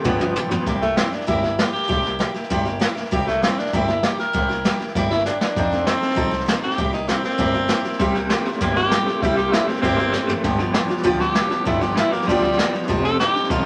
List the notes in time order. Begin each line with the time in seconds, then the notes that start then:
0.04 G1 G2 D3 F3 B3 F4 G4, kick, mid tom
0.20 G2 F3 B3 F4 G4, mid tom
0.36 G2 E3 F3 B3 F4 G4, floor tom, hi-hat pedal
0.51 G2 E3 F3 B3 F4 G4, muted upright bass stroke, floor tom
0.66 C2 C3 G3 A#3 E4 G4, kick, snare
0.82 A3 A#3 E4 G4, snare
0.97 G3 A#3 C4 E4 G4, snare, hi-hat pedal
1.12 A#3 D4 E4 G4, muted upright bass stroke, snare
1.21 snare
1.26 G1 C3 G3 A#3 E4 G4, kick, snare
1.42 A#3 E4 G4, snare
1.59 G3 A#3 E4 G4, snare, hi-hat pedal
1.73 A#3 E4 G4, muted upright bass stroke, snare
1.83 snare
1.88 C2 C3 G3 A#3 E4 G4, kick, snare
2.03 A#3 E4 G4, snare
2.19 G3 A#3 E4 G4, snare, hi-hat pedal
2.34 A#3 E4 G4, muted upright bass stroke, snare
2.43 snare
2.50 G1 C3 G3 A#3 E4 G4, kick, snare
2.65 A#3 E4 G4, snare
2.80 G3 A#3 E4 G4, snare, hi-hat pedal
2.95 A#3 E4 G4, muted upright bass stroke, snare
3.05 snare
3.11 C2 C3 G3 A#3 E4 G4, kick, snare
3.27 A3 A#3 E4 G4, snare
3.42 G3 A#3 C4 E4 G4, snare, hi-hat pedal
3.58 A#3 D4 E4 G4, muted upright bass stroke, snare
3.66 snare
3.73 G1 C3 G3 A#3 E4 G4, kick, snare
3.88 A#3 E4 G4, snare
4.03 G3 A#3 E4 G4, snare, hi-hat pedal
4.18 A#3 E4 G4 A#4, muted upright bass stroke, snare
4.33 C2 C3 G3 A#3 E4 G4, kick, snare
4.49 A#3 E4 G4, snare
4.65 G3 A#3 E4 G4, snare, hi-hat pedal
4.79 A#3 E4 G4, snare
4.88 snare
4.95 G1 C3 G3 A#3 E4 G4, kick, snare
5.10 A#3 E4 G4, snare
5.18 snare
5.25 G3 A#3 D4 E4 G4, snare, hi-hat pedal
5.40 D4 E4 G4, muted upright bass stroke, snare
5.44 A#3
5.56 F2 F3 C4 D#4 A4, kick, snare
5.72 C4 D#4 A4, snare
5.86 F3 C4 D#4 A4, snare, hi-hat pedal
6.01 C4 D#4 A4, snare
6.10 snare
6.15 C2 F3 C4 D#4 A4, kick, snare
6.31 C4 D#4 A4, snare
6.40 snare
6.46 F3 C4 D#4 A4, snare, hi-hat pedal
6.62 C4 D#4 G4 A4, muted upright bass stroke, snare
6.71 snare
6.78 C2 C3 G3 A#3 E4 G4, kick, snare
6.93 A#3 D#4 E4 G4, snare
7.08 G3 A#3 C4 E4 G4, snare, hi-hat pedal
7.23 A#3 C4 E4 G4, muted upright bass stroke, snare
7.31 snare
7.38 G1 C3 G3 A#3 E4 G4, kick, snare
7.54 A#3 E4 G4, snare
7.68 G3 A#3 E4 G4, snare, hi-hat pedal
7.84 A#3 E4 G4, muted upright bass stroke, snare
7.92 snare
7.99 C2 C3 G3 A#3 E4 G4, kick, snare
8.14 C3 G3 A#3 E4 G4, snare
8.29 C3 G3 A3 A#3 E4 G4, snare, hi-hat pedal
8.45 C3 A3 A#3 E4 G4, muted upright bass stroke, snare
8.53 snare
8.60 G1 C3 G3 A#3 E4 G4, kick, snare
8.76 C3 A#3 E4 G4, snare
8.91 C3 G3 A3 A#3 E4 G4, snare, hi-hat pedal
9.07 C3 A3 E4 G4, muted upright bass stroke, snare
9.11 A#3
9.22 C2 C3 G3 A#3 E4 G4, kick, snare
9.36 C3 G3 A#3 E4 G4, snare
9.52 C3 G3 A3 A#3 E4 G4, snare, hi-hat pedal
9.67 C3 A3 C4 E4 G4, muted upright bass stroke, snare
9.71 A#3
9.75 snare
9.82 G1 C3 G3 A#3 C4 E4 G4, kick, snare
9.97 C3 A#3 E4 G4, snare
10.01 A#3
10.12 C3 G3 A3 A#3 E4 G4, snare, hi-hat pedal
10.27 C3 A3 A#3 E4 G4, muted upright bass stroke, floor tom
10.43 G1 G2 D3 F3 B3 F4 G4, kick, snare
10.58 G2 D3 F3 B3 F4 G4, snare
10.73 G2 E3 F3 B3 F4 G4, snare, hi-hat pedal
10.88 G2 E3 F3 B3 F4 G4, snare
10.98 snare
11.03 D2 G2 D3 F3 B3 F4 G4, kick, snare
11.19 G2 F3 B3 F4 G4, snare
11.34 G2 E3 F3 B3 F4 G4, snare, hi-hat pedal
11.50 G2 E3 F3 B3 F4 G4, muted upright bass stroke, snare
11.65 G1 G2 D3 F3 B3 E4 F4 G4, kick, snare
11.81 G2 D3 F3 B3 F4 G4, snare
11.96 G2 E3 F3 B3 E4 F4 G4, snare, hi-hat pedal
12.11 G2 E3 A#3 F4 G4, muted upright bass stroke, snare
12.15 F3 B3
12.22 snare
12.26 D2 G2 D3 F3 G3 B3, kick, snare
12.31 F4 G4
12.41 G2 F3 B3 F4 G4, snare
12.46 F3
12.52 snare
12.57 G2 E3 F3 B3 F4 G4, snare, hi-hat pedal
12.73 G2 E3 F3 B3 F4 G4, muted upright bass stroke, snare
12.83 snare
12.88 F1 F2 C3 F3 C4 D#4 A4, kick, snare
13.03 F2 C3 D#4 A4, snare
13.08 C4
13.19 D3 F3 C4 D#4 G4 A4, snare, hi-hat pedal
13.34 F2 D3 C4 D#4 A4, snare
13.44 snare
13.49 C2 F2 D#3 F3 C4 D#4 F4 A4, kick, snare